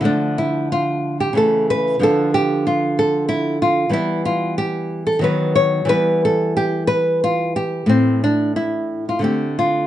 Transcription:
\new Staff \with { instrumentName = "Nylon-string guitar" } { \time 3/4 \key d \dorian \tempo 4 = 92 << { d'8 e'8 f'8. g'16 a'8 b'8 | a'8 g'8 f'8 a'8 e'8 f'8 | e'8 f'8 g'8. a'16 b'8 des''8 | b'8 a'8 g'8 b'8 f'8 g'8 |
c'8 d'8 e'8. f'16 g'8 f'8 | } \\ { <d f a>2 <cis e a>4 | <d f d'>2. | <e g b>2 <dis fis b>4 | <e g b>2. |
<a, a>2 <d a c'>4 | } >> }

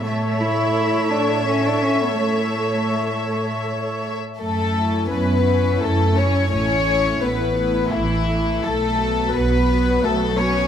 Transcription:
<<
  \new Staff \with { instrumentName = "Violin section" } { \time 3/4 \key a \major \tempo 4 = 85 e''2.~ | e''2~ e''8 r8 | a'4 b'4 a'8 cis''8 | cis''4 b'4 e'4 |
a'4 b'4 a'8 cis''8 | }
  \new Staff \with { instrumentName = "Cello" } { \time 3/4 \key a \major a8 e'4 d'8 cis'16 d'16 cis'16 b16 | a2 r4 | r2. | r2. |
r2. | }
  \new Staff \with { instrumentName = "Viola section" } { \time 3/4 \key a \major <a' cis''>2.~ | <a' cis''>2~ <a' cis''>8 r8 | r8 <cis' e'>4 <cis' e'>4 <cis' e'>8 | <a e'>8 <a e'>4 <a e'>4 <a e'>8 |
r8 <fis b>4 <fis b>4 <fis b>8 | }
  \new Staff \with { instrumentName = "Cello section" } { \time 3/4 \key a \major a,2.~ | a,2~ a,8 r8 | a4 b4 a8 cis'8 | cis'4 b4 e4 |
a4 b4 a8 cis'8 | }
  \new Staff \with { instrumentName = "Double bass section" } { \clef bass \time 3/4 \key a \major r2. | r2. | fis,4 fis,4 fis,4 | a,,4 a,,4 a,,4 |
b,,4 b,,4 b,,4 | }
>>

